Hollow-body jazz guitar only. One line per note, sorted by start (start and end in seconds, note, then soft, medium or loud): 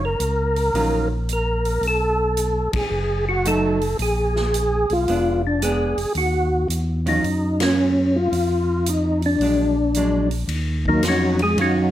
0.74 1.07 D#3 medium
0.74 1.08 F#3 medium
0.74 1.08 C#4 medium
0.74 1.08 F4 medium
3.45 3.78 F#3 medium
3.45 3.78 A3 medium
3.45 3.79 D#4 medium
5.08 5.41 G#3 medium
5.08 5.41 B3 medium
5.08 5.42 D4 medium
5.63 5.95 G#3 medium
5.63 5.95 B3 medium
5.63 5.96 D4 medium
7.06 7.23 D#3 medium
7.06 7.23 F#3 medium
7.06 7.23 C#4 medium
7.06 7.23 F4 medium
9.42 9.74 F#3 medium
9.42 9.74 G#3 medium
9.42 9.74 D4 medium
9.97 10.28 F#3 medium
9.97 10.29 G#3 medium
9.97 10.29 D4 medium
11.58 11.90 D#3 medium
11.58 11.90 F#3 medium
11.58 11.90 C#4 medium
11.58 11.91 F4 medium